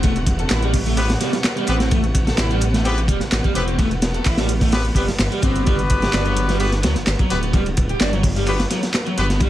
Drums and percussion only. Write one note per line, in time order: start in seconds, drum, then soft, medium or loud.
0.03 kick loud
0.03 closed hi-hat soft
0.03 ride loud
0.16 closed hi-hat soft
0.16 ride soft
0.26 kick loud
0.26 closed hi-hat medium
0.26 ride medium
0.39 closed hi-hat soft
0.50 snare loud
0.50 clap loud
0.50 closed hi-hat soft
0.50 ride loud
0.62 closed hi-hat soft
0.74 kick medium
0.74 closed hi-hat medium
0.74 open hi-hat medium
0.86 closed hi-hat soft
0.97 closed hi-hat soft
0.97 ride medium
1.10 snare medium
1.10 closed hi-hat soft
1.21 snare soft
1.21 closed hi-hat medium
1.21 ride medium
1.33 snare medium
1.33 closed hi-hat soft
1.44 snare loud
1.44 clap loud
1.44 closed hi-hat soft
1.44 ride medium
1.57 closed hi-hat soft
1.67 closed hi-hat medium
1.67 ride medium
1.80 snare medium
1.80 closed hi-hat soft
1.91 kick loud
1.91 closed hi-hat soft
1.91 ride medium
2.04 closed hi-hat soft
2.15 kick medium
2.15 closed hi-hat medium
2.15 ride medium
2.27 snare medium
2.27 closed hi-hat soft
2.38 snare loud
2.38 clap loud
2.38 closed hi-hat soft
2.38 ride medium
2.51 closed hi-hat soft
2.61 closed hi-hat medium
2.61 ride medium
2.74 snare soft
2.74 closed hi-hat soft
2.85 closed hi-hat soft
2.85 ride medium
2.98 closed hi-hat soft
3.08 kick medium
3.08 closed hi-hat medium
3.08 ride medium
3.20 snare soft
3.20 closed hi-hat soft
3.32 snare loud
3.32 clap loud
3.32 closed hi-hat soft
3.32 ride medium
3.44 kick loud
3.44 closed hi-hat soft
3.55 closed hi-hat medium
3.55 ride medium
3.68 closed hi-hat soft
3.79 kick loud
3.79 closed hi-hat soft
3.79 ride medium
3.91 closed hi-hat soft
3.91 ride soft
4.02 snare loud
4.02 closed hi-hat medium
4.02 ride medium
4.14 closed hi-hat soft
4.25 kick medium
4.25 clap loud
4.25 closed hi-hat soft
4.25 open hi-hat medium
4.37 snare loud
4.37 closed hi-hat soft
4.37 ride medium
4.49 closed hi-hat medium
4.61 kick medium
4.61 closed hi-hat soft
4.61 open hi-hat medium
4.72 snare loud
4.72 closed hi-hat soft
4.72 ride medium
4.85 closed hi-hat soft
4.95 kick medium
4.95 closed hi-hat medium
4.95 open hi-hat medium
5.08 snare soft
5.08 closed hi-hat soft
5.19 snare loud
5.19 clap loud
5.19 closed hi-hat soft
5.19 ride medium
5.32 closed hi-hat soft
5.42 kick loud
5.42 closed hi-hat medium
5.42 ride medium
5.56 closed hi-hat soft
5.66 kick loud
5.66 closed hi-hat soft
5.66 ride medium
5.79 closed hi-hat soft
5.90 kick medium
5.90 closed hi-hat medium
5.90 ride medium
6.02 snare medium
6.02 closed hi-hat soft
6.13 snare loud
6.13 clap loud
6.13 closed hi-hat soft
6.13 ride medium
6.26 closed hi-hat soft
6.37 closed hi-hat medium
6.37 ride medium
6.49 snare soft
6.49 closed hi-hat soft
6.60 closed hi-hat soft
6.60 ride medium
6.72 snare soft
6.72 closed hi-hat soft
6.83 snare loud
6.83 closed hi-hat medium
6.83 ride medium
6.95 snare soft
6.95 closed hi-hat soft
7.07 snare loud
7.07 clap loud
7.07 closed hi-hat soft
7.07 ride medium
7.19 kick loud
7.19 closed hi-hat soft
7.30 closed hi-hat medium
7.30 ride medium
7.43 closed hi-hat soft
7.53 kick loud
7.53 closed hi-hat soft
7.53 ride medium
7.66 closed hi-hat soft
7.66 ride soft
7.77 kick medium
7.77 closed hi-hat medium
7.77 ride medium
7.89 closed hi-hat soft
8.00 snare loud
8.00 clap loud
8.00 closed hi-hat soft
8.00 ride medium
8.13 closed hi-hat soft
8.23 kick loud
8.23 closed hi-hat medium
8.23 open hi-hat medium
8.36 closed hi-hat soft
8.46 closed hi-hat soft
8.46 ride medium
8.60 snare medium
8.60 closed hi-hat soft
8.70 snare soft
8.70 closed hi-hat medium
8.70 ride medium
8.83 snare medium
8.83 closed hi-hat soft
8.94 snare loud
8.94 clap loud
8.94 closed hi-hat soft
8.94 ride medium
9.07 closed hi-hat soft
9.18 closed hi-hat medium
9.18 ride medium
9.30 snare soft
9.30 closed hi-hat soft
9.40 kick loud
9.40 closed hi-hat soft
9.40 ride medium